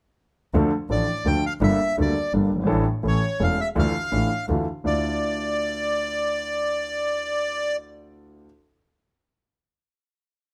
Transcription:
0.54 grand piano D2 D3 F3 A3 D4 A4, double bass D2
0.90 double bass A1, grand piano A1 A2 F3 A3 D4 A4, bandoneon D5
1.25 double bass D2, grand piano D2 D3 F3 A3 D4 A4, bandoneon G5
1.46 bandoneon F5
1.61 double bass G1, grand piano G1 G2 G3 A#3 D4 A4, bandoneon E5
1.97 grand piano D2 D3 G3 A#3 D4 A4, double bass D2
2.02 bandoneon D5
2.33 double bass G1, grand piano G1 G2 G3 A#3 D4 A4
2.51 grand piano F#1, double bass G1
2.59 grand piano G1 G#1
2.66 grand piano A1 A2 E3 A3 D4 A4, double bass A1
3.03 grand piano A1 A2 E3 A3 C#4 A4, double bass A1
3.08 bandoneon C#5
3.40 grand piano E1 E2 E3 A3 C#4 A4, double bass E1, bandoneon F5
3.61 bandoneon E5
3.75 grand piano D2 D3 E3 A3 D4 F4, double bass D2, bandoneon F5
4.12 grand piano A1 A2 E3 A3 D4 F4, double bass A1
4.48 double bass D2, grand piano D2 D3 E3 A3 D4 F4
4.84 grand piano D2 D4 E4 F4, double bass D2, bandoneon D5

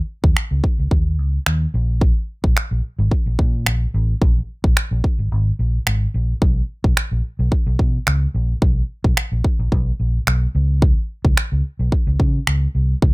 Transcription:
0.24 fingered electric bass D#2, kick
0.37 finger snap
0.51 fingered electric bass C#2
0.64 kick
0.78 fingered electric bass C#2
0.91 fingered electric bass D#2, kick
1.19 fingered electric bass C#2
1.46 fingered electric bass D#2, finger snap
1.74 fingered electric bass A#1
2.01 kick
2.44 fingered electric bass A#1, kick
2.57 finger snap
2.71 fingered electric bass A#1
2.99 fingered electric bass G#1
3.11 kick
3.26 fingered electric bass A#1
3.39 fingered electric bass A#2, kick
3.66 fingered electric bass A#1, finger snap
3.94 fingered electric bass A1
4.22 fingered electric bass A#1, kick
4.64 fingered electric bass A#1, kick
4.77 finger snap
4.91 fingered electric bass A#1
5.04 kick
5.19 fingered electric bass G#1
5.32 fingered electric bass G#1
5.59 fingered electric bass A#1
5.87 fingered electric bass G#1, finger snap
6.14 fingered electric bass A#1
6.42 fingered electric bass B1, kick
6.84 fingered electric bass B1, kick
6.97 finger snap
7.11 fingered electric bass A#1
7.39 fingered electric bass B1
7.52 kick
7.67 fingered electric bass B1
7.79 fingered electric bass B2, kick
8.07 fingered electric bass C#2, finger snap
8.34 fingered electric bass A#1
8.62 fingered electric bass B1, kick
9.04 fingered electric bass B1, kick
9.17 finger snap
9.32 fingered electric bass A#1
9.44 kick
9.59 fingered electric bass A#1
9.72 fingered electric bass B1, kick
10.00 fingered electric bass A#1
10.27 fingered electric bass B1, finger snap
10.55 fingered electric bass C#2
10.82 kick
11.25 fingered electric bass C#2, kick
11.37 finger snap
11.52 fingered electric bass C#2
11.79 fingered electric bass B1
11.92 kick
12.07 fingered electric bass C#2
12.20 fingered electric bass C#3, kick
12.47 fingered electric bass C#2, finger snap
12.75 fingered electric bass C2
13.02 fingered electric bass C#2, kick

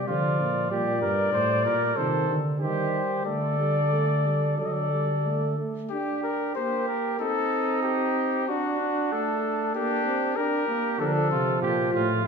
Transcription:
0.08 bass trombone D3, euphonium F3, trumpet F4 D5
0.40 bass trombone A#2
0.71 bass trombone A#2, euphonium G3, trumpet G4 D5
1.02 bass trombone G2, trumpet A#4
1.32 bass trombone A2, trumpet C5
1.65 bass trombone A#2, trumpet A#4
1.96 bass trombone C3, euphonium D#3, trumpet A4 C5
2.28 bass trombone D3
2.59 bass trombone D#3, euphonium G3, trumpet G4 C5
3.26 bass trombone D3, euphonium A3, trumpet A4 D5
3.60 euphonium G3
3.93 euphonium A3
4.27 euphonium G3
4.58 bass trombone D3, euphonium F#3, trumpet A4 D5
4.65 trumpet D#5
4.73 trumpet D5
4.92 euphonium G3
5.26 euphonium A3
5.59 euphonium A3
5.90 euphonium D4, trumpet G4
6.23 trumpet A#4
6.55 euphonium A#3, trumpet G4 C5
6.88 trumpet A#4
7.19 euphonium C4, trumpet D#4 A4
7.83 trumpet G4
8.48 trumpet D4 F#4, euphonium D4
8.81 euphonium D4
9.12 euphonium A3, trumpet A4
9.74 euphonium A#3, trumpet D4 G4
10.06 euphonium C4
10.36 euphonium D4, trumpet G4 A#4
10.68 euphonium A#3
10.99 bass trombone D3, euphonium F3, trumpet D4 A4
11.06 trumpet A#4
11.13 trumpet A4
11.31 bass trombone C3, trumpet F4
11.62 bass trombone A#2, trumpet F4 G4
11.93 bass trombone A2, trumpet F4

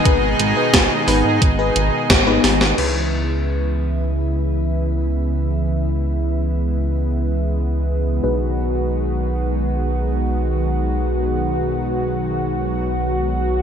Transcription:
Already playing: analog synth pad B2 D#3 G#3 D#4 G#4
0.05 analog synth bass G#1, fm electric piano B3 D#4 G#4 B4, kick, closed hi-hat
0.39 analog synth bass G#1, closed hi-hat
0.57 fm electric piano B3 D#4 G#4 B4
0.74 analog synth bass G#1, kick, snare, closed hi-hat
1.08 analog synth bass G#1, fm electric piano B3 D#4 G#4 B4, open hi-hat
1.25 analog synth bass G#2
1.42 analog synth bass G#1, kick, closed hi-hat
1.59 fm electric piano B3 D#4 G#4 B4
1.76 analog synth bass G#1, closed hi-hat
2.10 analog synth bass G#1, kick, snare, closed hi-hat
2.27 fm electric piano B3 D#4 G#4 B4
2.44 analog synth bass G#1, snare, open hi-hat
2.61 snare
2.78 analog synth bass C#2, analog synth pad C#3 E3 G#3 B3 E4, fm electric piano C#4 E4 G#4 B4, crash
8.24 analog synth bass B1, analog synth pad D#3 F#3 F#4, fm electric piano D#4 F#4 G#4 B4

